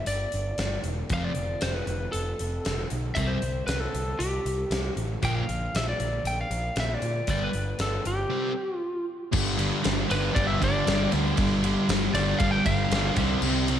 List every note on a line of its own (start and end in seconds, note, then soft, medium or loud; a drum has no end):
0.06 0.25 G1 medium
0.06 0.81 D5 medium
0.06 closed hi-hat medium
0.32 0.52 G1 medium
0.32 closed hi-hat medium
0.58 0.76 G1 medium
0.58 snare loud
0.58 closed hi-hat medium
0.84 1.02 E1 medium
0.84 closed hi-hat medium
1.10 1.28 F1 medium
1.10 1.32 F2 medium
1.10 1.32 C3 medium
1.10 1.32 F3 medium
1.10 1.24 F5 loud
1.10 kick loud
1.10 closed hi-hat medium
1.24 1.64 D5 medium
1.35 1.54 F1 medium
1.35 closed hi-hat medium
1.61 1.80 F1 medium
1.61 1.74 C5 medium
1.61 snare loud
1.61 closed hi-hat medium
1.74 2.12 B4 medium
1.87 2.06 F1 medium
1.87 closed hi-hat medium
2.12 2.32 F1 medium
2.12 2.86 A4 medium
2.12 closed hi-hat medium
2.39 2.58 F1 medium
2.39 closed hi-hat medium
2.65 2.84 F1 medium
2.65 snare loud
2.65 closed hi-hat medium
2.90 3.10 B1 medium
2.90 closed hi-hat medium
3.15 3.35 C2 medium
3.15 3.37 C3 medium
3.15 3.37 G3 medium
3.15 3.38 C4 loud
3.15 3.29 E5 medium
3.15 kick loud
3.15 closed hi-hat medium
3.27 3.66 C5 medium
3.42 3.61 C2 medium
3.42 closed hi-hat medium
3.67 3.86 C2 medium
3.67 3.80 B4 medium
3.67 snare loud
3.67 closed hi-hat medium
3.80 4.21 A4 medium
3.94 4.13 C2 medium
3.94 closed hi-hat medium
4.19 4.38 C2 medium
4.19 4.93 G4 medium
4.19 closed hi-hat medium
4.45 4.64 C2 medium
4.45 closed hi-hat medium
4.70 4.89 C2 medium
4.70 snare loud
4.70 closed hi-hat medium
4.97 5.15 A1 medium
4.97 closed hi-hat medium
5.22 5.41 A#1 medium
5.22 5.43 A#2 medium
5.22 5.43 F3 medium
5.22 5.44 A#3 medium
5.22 5.35 G5 loud
5.22 kick loud
5.22 closed hi-hat medium
5.35 5.75 F5 medium
5.49 5.67 A#1 medium
5.49 closed hi-hat medium
5.74 5.93 A#1 medium
5.74 5.87 E5 loud
5.74 snare loud
5.74 closed hi-hat medium
5.89 6.24 D5 medium
6.00 6.18 A#1 medium
6.00 closed hi-hat medium
6.24 6.43 A#1 medium
6.24 6.40 G5 loud
6.24 closed hi-hat medium
6.41 6.79 F5 medium
6.50 6.69 A#1 medium
6.50 closed hi-hat medium
6.76 6.95 A#1 medium
6.76 6.94 E5 medium
6.76 snare loud
6.76 closed hi-hat medium
6.94 7.29 D5 medium
7.02 7.21 A#2 medium
7.02 closed hi-hat medium
7.27 7.46 G1 medium
7.27 7.49 G2 medium
7.27 7.49 D3 medium
7.27 7.50 G3 loud
7.27 7.43 D5 medium
7.27 kick loud
7.27 closed hi-hat medium
7.44 7.81 B4 medium
7.53 7.72 G1 medium
7.53 closed hi-hat medium
7.79 7.98 G1 medium
7.79 8.06 A4 medium
7.79 snare loud
7.79 closed hi-hat medium
8.05 8.24 G1 medium
8.05 8.75 G4 medium
8.05 closed hi-hat medium
8.30 8.51 C3 medium
8.30 8.52 G3 medium
8.30 8.52 C4 loud
8.75 9.05 F4 medium
9.32 9.70 G1 loud
9.32 9.57 G2 medium
9.32 9.58 D3 loud
9.32 9.59 G3 loud
9.32 kick loud
9.32 crash loud
9.58 9.83 G2 medium
9.58 9.83 D3 medium
9.58 9.84 G3 medium
9.58 ride medium
9.83 10.04 G1 medium
9.83 10.06 G2 medium
9.83 10.08 D3 medium
9.83 10.08 G3 medium
9.83 snare loud
9.83 ride loud
10.08 10.29 G1 medium
10.08 10.32 G2 loud
10.08 10.33 D3 loud
10.08 10.34 G3 loud
10.08 10.37 B4 medium
10.08 ride medium
10.33 10.55 G1 medium
10.33 10.59 G2 medium
10.33 10.60 D3 loud
10.33 10.61 G3 loud
10.33 10.47 D5 loud
10.33 kick loud
10.33 ride loud
10.47 10.61 E5 loud
10.60 10.80 G1 medium
10.60 10.85 G2 medium
10.60 10.86 D3 loud
10.60 10.86 G3 loud
10.60 11.10 D5 loud
10.60 kick medium
10.60 ride medium
10.86 11.06 G1 loud
10.86 11.11 G2 medium
10.86 11.12 D3 loud
10.86 11.13 G3 medium
10.86 snare loud
10.86 ride loud
11.12 11.31 D2 medium
11.12 11.37 G2 medium
11.12 11.38 D3 medium
11.12 11.39 G3 medium
11.12 ride medium
11.37 11.75 G1 loud
11.37 11.63 G2 loud
11.37 11.63 D3 loud
11.37 11.65 G3 loud
11.37 kick loud
11.37 ride loud
11.64 11.89 G2 medium
11.64 11.90 D3 medium
11.64 11.91 G3 loud
11.64 ride medium
11.89 12.07 G1 medium
11.89 12.14 G2 medium
11.89 12.14 D3 medium
11.89 12.16 G3 medium
11.89 snare loud
11.89 ride loud
12.13 12.32 G1 medium
12.13 12.40 G2 loud
12.13 12.41 D3 loud
12.13 12.43 G3 loud
12.13 12.41 D5 medium
12.13 ride medium
12.39 12.59 G1 medium
12.39 12.64 G2 medium
12.39 12.51 F5 loud
12.39 kick loud
12.39 ride loud
12.43 12.65 D3 loud
12.43 12.67 G3 loud
12.51 12.65 G5 loud
12.65 12.84 G1 medium
12.65 12.92 G2 loud
12.65 12.93 D3 loud
12.65 12.94 G3 loud
12.65 13.13 F5 medium
12.65 kick medium
12.65 ride medium
12.90 13.09 G1 loud
12.90 13.16 G2 medium
12.90 13.18 G3 loud
12.90 snare loud
12.90 ride loud
12.95 13.17 D3 medium
13.16 13.35 C2 medium
13.16 13.44 C3 loud
13.16 13.45 G3 loud
13.16 13.46 C4 loud
13.16 kick loud
13.16 ride medium
13.42 13.79 C2 loud
13.42 13.69 C3 loud
13.42 13.69 G3 medium
13.42 crash loud
13.46 13.70 C4 loud
13.68 13.80 C3 loud
13.68 13.80 G3 medium
13.68 13.80 C4 loud
13.68 ride medium